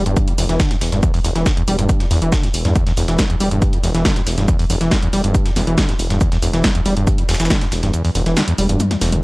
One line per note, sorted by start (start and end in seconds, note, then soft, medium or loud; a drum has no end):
0.06 0.15 E1 medium
0.06 0.29 G2 medium
0.06 closed hi-hat medium
0.17 kick loud
0.17 closed hi-hat medium
0.17 shaker medium
0.28 0.33 E2 loud
0.28 closed hi-hat medium
0.38 0.47 E1 loud
0.38 0.44 E2 medium
0.38 open hi-hat loud
0.38 shaker medium
0.49 0.58 E1 medium
0.49 0.61 E3 medium
0.49 snare soft
0.49 closed hi-hat medium
0.60 0.72 D3 medium
0.60 kick loud
0.60 snare loud
0.60 closed hi-hat medium
0.60 shaker medium
0.71 0.77 E2 loud
0.71 snare medium
0.71 closed hi-hat medium
0.81 0.90 E1 medium
0.81 snare medium
0.81 open hi-hat loud
0.81 shaker medium
0.92 1.01 E1 medium
0.92 1.01 G2 medium
0.92 snare soft
0.92 closed hi-hat medium
1.03 1.12 E2 medium
1.03 kick loud
1.03 closed hi-hat medium
1.03 shaker medium
1.14 1.20 E2 loud
1.14 open hi-hat medium
1.24 1.33 E1 loud
1.24 1.31 E2 medium
1.24 open hi-hat loud
1.24 shaker medium
1.35 1.44 E1 medium
1.35 1.48 E3 medium
1.35 snare soft
1.35 closed hi-hat medium
1.46 1.52 D3 medium
1.46 kick loud
1.46 snare loud
1.46 closed hi-hat medium
1.46 shaker medium
1.57 1.63 E2 loud
1.57 closed hi-hat medium
1.68 1.77 E1 medium
1.68 1.77 G3 medium
1.68 open hi-hat loud
1.68 shaker medium
1.79 1.87 E1 medium
1.79 2.02 G2 medium
1.79 closed hi-hat soft
1.79 closed hi-hat medium
1.89 kick loud
1.89 closed hi-hat medium
1.89 shaker medium
2.00 2.06 E2 loud
2.00 snare soft
2.00 closed hi-hat medium
2.11 2.20 E2 medium
2.11 2.17 E2 medium
2.11 open hi-hat loud
2.11 shaker medium
2.22 2.30 E1 medium
2.22 2.34 E3 medium
2.22 closed hi-hat medium
2.32 2.45 D3 medium
2.32 kick loud
2.32 snare loud
2.32 closed hi-hat medium
2.32 shaker medium
2.43 2.49 E2 loud
2.43 snare soft
2.43 closed hi-hat medium
2.54 2.63 E1 medium
2.54 open hi-hat loud
2.54 shaker medium
2.65 2.74 E2 medium
2.65 2.74 G2 medium
2.65 snare medium
2.65 closed hi-hat medium
2.75 2.85 E2 medium
2.75 kick loud
2.75 closed hi-hat medium
2.75 shaker medium
2.87 2.92 E2 loud
2.87 snare soft
2.87 closed hi-hat medium
2.97 3.06 E1 medium
2.97 3.03 E2 medium
2.97 open hi-hat loud
2.97 shaker medium
3.08 3.17 E1 medium
3.08 3.20 E3 medium
3.08 snare medium
3.08 closed hi-hat medium
3.19 3.25 D3 medium
3.19 kick loud
3.19 snare loud
3.19 closed hi-hat medium
3.19 shaker medium
3.30 3.36 E2 loud
3.30 closed hi-hat medium
3.40 3.49 E1 medium
3.40 3.49 G3 medium
3.40 open hi-hat loud
3.40 shaker medium
3.51 3.60 E1 medium
3.51 3.74 G2 medium
3.51 closed hi-hat medium
3.62 kick loud
3.62 closed hi-hat medium
3.62 shaker medium
3.73 3.79 E2 loud
3.73 closed hi-hat medium
3.83 3.92 E1 loud
3.83 3.90 E2 medium
3.83 open hi-hat loud
3.83 shaker medium
3.94 4.03 E1 medium
3.94 4.07 E3 medium
3.94 snare soft
3.94 closed hi-hat medium
4.05 4.18 D3 medium
4.05 kick loud
4.05 snare loud
4.05 closed hi-hat medium
4.05 shaker medium
4.16 4.22 E2 loud
4.16 snare medium
4.16 closed hi-hat medium
4.27 4.36 E1 medium
4.27 snare medium
4.27 open hi-hat loud
4.27 shaker medium
4.38 4.46 E1 medium
4.38 4.46 G2 medium
4.38 snare soft
4.38 closed hi-hat medium
4.48 4.57 E2 medium
4.48 kick loud
4.48 closed hi-hat medium
4.48 shaker medium
4.59 4.65 E2 loud
4.59 open hi-hat medium
4.70 4.79 E1 medium
4.70 4.76 E2 medium
4.70 open hi-hat loud
4.70 shaker medium
4.81 4.89 E1 medium
4.81 4.93 E3 medium
4.81 snare soft
4.81 closed hi-hat medium
4.91 4.97 D3 medium
4.91 kick loud
4.91 snare loud
4.91 closed hi-hat medium
4.91 shaker medium
5.02 5.08 E2 loud
5.02 closed hi-hat medium
5.13 5.22 E1 medium
5.13 5.22 G3 medium
5.13 open hi-hat loud
5.13 shaker medium
5.24 5.33 E1 medium
5.24 5.47 G2 medium
5.24 closed hi-hat soft
5.24 closed hi-hat medium
5.35 kick loud
5.35 closed hi-hat medium
5.35 shaker medium
5.46 5.51 E2 loud
5.46 snare soft
5.46 closed hi-hat medium
5.56 5.65 E1 loud
5.56 5.62 E2 medium
5.56 snare medium
5.56 open hi-hat loud
5.56 shaker medium
5.67 5.76 E1 medium
5.67 5.79 E3 medium
5.67 closed hi-hat medium
5.78 5.90 D3 medium
5.78 kick loud
5.78 snare loud
5.78 closed hi-hat medium
5.78 shaker medium
5.89 5.95 E2 loud
5.89 snare soft
5.89 closed hi-hat medium
5.99 6.08 E1 loud
5.99 open hi-hat loud
5.99 shaker medium
6.10 6.19 E1 medium
6.10 6.19 G2 medium
6.10 snare medium
6.10 closed hi-hat medium
6.21 6.30 E2 medium
6.21 kick loud
6.21 closed hi-hat medium
6.21 shaker medium
6.32 6.38 E2 loud
6.32 snare soft
6.32 closed hi-hat medium
6.42 6.51 E1 loud
6.42 6.49 E2 medium
6.42 open hi-hat loud
6.42 shaker medium
6.53 6.62 E1 medium
6.53 6.66 E3 medium
6.53 snare medium
6.53 closed hi-hat medium
6.64 6.70 D3 medium
6.64 kick loud
6.64 snare loud
6.64 closed hi-hat medium
6.64 shaker medium
6.75 6.81 E2 loud
6.75 closed hi-hat medium
6.86 6.95 E1 medium
6.86 6.95 G3 medium
6.86 open hi-hat loud
6.86 shaker medium
6.97 7.05 E1 medium
6.97 7.20 G2 medium
6.97 closed hi-hat medium
7.07 kick loud
7.07 closed hi-hat medium
7.07 shaker medium
7.18 7.24 E2 loud
7.18 closed hi-hat medium
7.29 7.38 E1 medium
7.29 7.35 E2 medium
7.29 snare medium
7.29 open hi-hat loud
7.29 shaker medium
7.34 snare medium
7.34 shaker medium
7.40 7.48 E1 medium
7.40 7.52 E3 medium
7.40 snare medium
7.40 closed hi-hat medium
7.40 shaker medium
7.45 snare medium
7.45 shaker medium
7.50 7.63 D3 medium
7.50 kick loud
7.50 snare loud
7.50 closed hi-hat medium
7.50 shaker medium
7.61 7.67 E2 loud
7.61 snare medium
7.61 closed hi-hat medium
7.72 7.81 E1 loud
7.72 snare medium
7.72 open hi-hat loud
7.72 shaker medium
7.83 7.92 E1 medium
7.83 7.92 G2 medium
7.83 snare soft
7.83 closed hi-hat medium
7.93 8.03 E2 medium
7.93 closed hi-hat medium
7.93 shaker medium
8.05 8.10 E2 loud
8.05 open hi-hat medium
8.15 8.24 E1 loud
8.15 8.21 E2 medium
8.15 open hi-hat loud
8.15 shaker medium
8.26 8.35 E1 medium
8.26 8.38 E3 medium
8.26 snare soft
8.26 closed hi-hat medium
8.37 8.43 D3 medium
8.37 snare loud
8.37 closed hi-hat medium
8.37 shaker medium
8.48 8.54 E2 loud
8.48 closed hi-hat medium
8.58 8.67 E1 medium
8.58 8.67 G3 medium
8.58 open hi-hat loud
8.58 shaker medium
8.69 8.78 E1 medium
8.69 8.92 G2 medium
8.69 closed hi-hat soft
8.69 closed hi-hat medium
8.80 closed hi-hat medium
8.80 high tom medium
8.80 shaker medium
8.91 8.97 E2 loud
8.91 snare soft
8.91 closed hi-hat medium
8.91 high tom medium
9.01 9.14 E1 medium
9.01 9.10 E1 loud
9.01 snare medium
9.01 open hi-hat loud
9.01 shaker medium
9.12 9.21 E1 medium
9.12 9.16 A#2 medium
9.12 closed hi-hat medium
9.12 mid tom medium